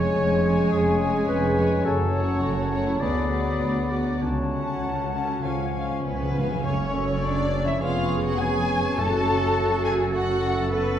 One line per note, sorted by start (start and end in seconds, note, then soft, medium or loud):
0.00 0.71 F2 medium
0.00 0.42 G#3 medium
0.00 0.90 G#3 medium
0.00 1.81 G#3 medium
0.00 3.01 C#4 medium
0.00 0.33 G#4 soft
0.00 1.81 G#4 medium
0.00 0.42 C#5 medium
0.00 0.71 C#5 loud
0.00 1.81 C#5 medium
0.00 0.42 G#5 medium
0.00 1.81 G#5 medium
0.15 0.65 F1 medium
0.15 0.65 F2 medium
0.15 0.52 C#4 medium
0.34 1.08 G#4 medium
0.43 0.99 G#3 medium
0.43 0.99 C#5 medium
0.43 0.99 G#5 medium
0.53 1.27 C#4 medium
0.72 1.22 F1 medium
0.72 1.21 F2 medium
0.72 1.87 F2 medium
0.72 1.27 G#4 medium
0.91 1.88 G#3 medium
1.00 1.55 G#3 medium
1.00 1.55 C#5 medium
1.00 1.56 G#5 medium
1.10 1.46 G#4 medium
1.28 1.78 F1 medium
1.28 1.78 F2 medium
1.28 1.65 C#4 medium
1.28 1.87 B4 medium
1.47 1.88 G#4 medium
1.56 1.84 G#3 medium
1.56 1.84 C#5 medium
1.56 1.85 G#5 medium
1.66 2.80 C#4 medium
1.85 2.36 F#1 medium
1.85 2.36 F#2 medium
1.85 3.03 F#2 medium
1.85 2.39 F#3 medium
1.85 5.39 F#4 medium
1.85 2.42 A4 medium
1.85 2.38 C#5 medium
1.85 2.38 A5 medium
2.04 5.46 F#3 medium
2.14 2.70 A3 medium
2.14 2.70 C#5 medium
2.14 2.71 F#5 medium
2.24 2.61 A4 soft
2.42 2.94 F#1 medium
2.42 2.94 F#2 medium
2.42 3.00 F#3 medium
2.42 3.39 F#4 medium
2.42 2.89 F#4 medium
2.42 3.02 C#5 medium
2.42 3.03 A5 medium
2.62 3.03 A4 medium
2.71 3.00 A3 medium
2.71 3.00 C#5 medium
2.71 3.00 F#5 medium
2.82 3.03 C#4 medium
2.87 3.03 E4 medium
3.00 3.53 D2 medium
3.00 4.24 D3 medium
3.00 4.19 F#3 medium
3.00 3.29 B3 soft
3.00 4.19 B3 medium
3.00 3.93 G#4 medium
3.00 4.20 D5 medium
3.00 3.29 D5 medium
3.00 3.29 F#5 soft
3.00 3.98 B5 medium
3.21 4.24 B3 soft
3.30 3.89 B3 soft
3.30 3.89 D5 medium
3.30 3.89 F#5 soft
3.40 3.79 F#4 soft
3.60 4.14 D2 medium
3.60 4.00 B4 soft
3.90 4.21 B3 soft
3.90 4.21 F#4 medium
3.90 4.21 D5 soft
3.90 4.21 F#5 soft
4.01 4.24 B4 soft
4.20 4.76 C#2 medium
4.20 5.43 C#3 medium
4.20 4.82 F#3 medium
4.20 5.40 A3 soft
4.20 4.61 D4 medium
4.20 4.82 C#5 soft
4.20 4.82 A5 medium
4.42 5.63 C#4 soft
4.52 5.13 C#4 soft
4.52 5.12 F#5 medium
4.52 5.12 A5 soft
4.63 5.02 F#4 soft
4.83 5.36 C#2 medium
4.83 5.37 C#2 medium
4.83 5.45 F#3 soft
4.83 6.31 C#4 medium
4.83 5.42 C#5 soft
4.83 6.04 C#5 soft
4.83 5.40 A5 medium
5.04 5.46 F#4 soft
5.13 5.43 C#4 soft
5.13 5.43 F#5 medium
5.13 5.43 A5 soft
5.24 5.46 A4 soft
5.43 5.97 C#2 medium
5.43 5.50 C#3 soft
5.43 6.67 C#3 soft
5.43 6.35 F3 soft
5.43 6.35 G#3 soft
5.43 5.73 C#4 soft
5.43 6.35 F4 medium
5.43 6.33 C#5 soft
5.43 5.72 F5 soft
5.43 5.91 F#5 medium
5.43 5.73 G#5 soft
5.52 5.58 C#3 soft
5.60 5.66 C#3 soft
5.64 5.74 C#3 soft
5.64 6.55 C#4 soft
5.73 5.82 C#3 soft
5.73 6.34 C#4 soft
5.73 6.03 F5 soft
5.73 6.04 G#5 medium
5.83 5.89 C#3 soft
5.83 6.24 F4 soft
5.90 5.97 C#3 soft
5.90 6.04 F5 medium
5.98 6.05 C#3 medium
6.04 6.58 C#2 soft
6.04 6.58 C#2 medium
6.04 6.13 C#3 soft
6.04 6.61 B3 medium
6.04 6.61 B4 medium
6.04 9.95 C#5 soft
6.04 6.64 G#5 medium
6.14 6.21 C#3 medium
6.22 6.29 C#3 medium
6.22 6.67 F4 soft
6.30 6.37 C#3 medium
6.35 6.45 C#3 medium
6.35 6.65 C#4 soft
6.35 6.64 F5 soft
6.35 6.64 G#5 soft
6.45 7.75 F#2 medium
6.45 6.52 C#3 medium
6.45 6.67 G#4 soft
6.51 6.61 C#3 medium
6.51 7.77 F#3 soft
6.56 7.71 C#4 soft
6.61 7.48 F#2 medium
6.61 7.77 A3 medium
6.61 7.23 C#4 medium
6.61 7.81 A4 medium
6.65 7.78 F#1 medium
6.65 7.77 F#2 medium
6.65 7.83 C#4 medium
6.65 10.99 C#4 medium
6.65 7.83 A4 medium
6.65 7.23 C#5 medium
6.65 7.77 C#5 medium
6.65 7.77 C#6 medium
7.23 7.67 D4 medium
7.23 7.67 D5 medium
7.63 8.91 F2 medium
7.63 7.73 E4 medium
7.67 8.94 G#3 soft
7.67 7.82 E5 medium
7.72 8.88 C#4 soft
7.77 8.98 B3 medium
7.77 8.98 B4 soft
7.77 8.39 C#5 medium
7.81 8.98 F1 medium
7.81 8.98 F2 medium
7.81 8.39 B3 medium
7.81 8.24 F4 medium
7.81 8.94 G#4 medium
7.81 8.40 G#4 medium
7.81 8.25 F5 medium
7.81 8.39 C#6 medium
8.25 8.40 F#4 medium
8.25 8.40 F#5 medium
8.40 8.97 B3 medium
8.40 8.98 G#4 medium
8.40 9.01 G#4 medium
8.40 9.00 C#5 medium
8.40 8.98 G#5 loud
8.40 8.97 C#6 medium
8.80 10.99 F#2 soft
8.84 10.99 F#3 soft
8.89 10.99 C#4 soft
8.93 10.99 A4 soft
8.97 10.99 F#1 medium
8.97 9.80 F#2 medium
8.97 10.99 F#2 medium
8.97 10.11 A3 medium
8.97 10.99 A3 medium
8.97 10.72 F#4 medium
8.97 10.14 F#4 medium
8.97 9.83 A4 loud
8.97 10.12 A4 medium
8.97 9.84 A5 medium
8.97 9.90 C#6 medium
9.84 10.13 G#4 medium
9.84 9.93 G#5 medium
10.13 10.99 A3 medium
10.13 10.70 F#4 medium
10.13 10.99 F#4 medium
10.13 10.99 A4 medium
10.13 10.71 F#5 medium
10.13 10.99 C#6 medium
10.71 10.99 B3 medium
10.71 10.79 A4 medium
10.71 10.99 B4 medium